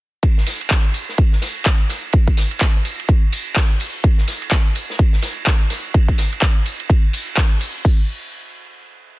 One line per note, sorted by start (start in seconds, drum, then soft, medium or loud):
0.23 kick loud
0.23 ride medium
0.38 snare soft
0.46 snare soft
0.46 open hi-hat loud
0.46 ride medium
0.61 ride soft
0.70 kick loud
0.70 snare loud
0.70 clap loud
0.70 ride medium
0.94 open hi-hat medium
0.94 ride medium
1.09 snare soft
1.18 kick loud
1.18 ride medium
1.32 snare soft
1.42 snare soft
1.42 open hi-hat loud
1.42 ride medium
1.65 kick loud
1.65 snare loud
1.65 clap loud
1.65 ride medium
1.89 snare soft
1.89 open hi-hat medium
1.89 ride medium
2.13 kick loud
2.13 ride medium
2.28 kick medium
2.37 snare medium
2.37 open hi-hat loud
2.37 ride medium
2.51 ride soft
2.61 kick loud
2.61 snare loud
2.61 clap loud
2.61 ride medium
2.85 open hi-hat loud
2.85 ride medium
3.00 ride soft
3.09 kick loud
3.09 ride medium
3.32 open hi-hat loud
3.32 ride medium
3.56 kick loud
3.56 snare loud
3.56 clap loud
3.56 open hi-hat medium
3.80 open hi-hat loud
3.80 ride medium
4.04 kick loud
4.04 ride medium
4.18 snare soft
4.28 snare soft
4.28 open hi-hat loud
4.28 ride medium
4.42 ride soft
4.51 kick loud
4.51 snare loud
4.51 clap loud
4.51 ride medium
4.75 open hi-hat loud
4.75 ride medium
4.90 snare soft
4.99 kick loud
4.99 ride medium
5.13 snare soft
5.22 snare medium
5.22 open hi-hat loud
5.22 ride medium
5.47 kick loud
5.47 snare loud
5.47 clap loud
5.47 ride medium
5.70 snare soft
5.70 open hi-hat loud
5.70 ride medium
5.94 kick loud
5.94 ride medium
6.08 kick medium
6.18 snare medium
6.18 open hi-hat loud
6.18 ride medium
6.32 ride soft
6.42 kick loud
6.42 snare loud
6.42 clap loud
6.42 ride medium
6.66 open hi-hat loud
6.66 ride medium
6.80 ride soft
6.90 kick loud
6.90 ride medium
7.13 open hi-hat loud
7.13 ride medium
7.37 kick loud
7.37 snare loud
7.37 clap loud
7.37 open hi-hat medium
7.60 open hi-hat loud
7.60 ride medium
7.85 kick loud
7.85 crash medium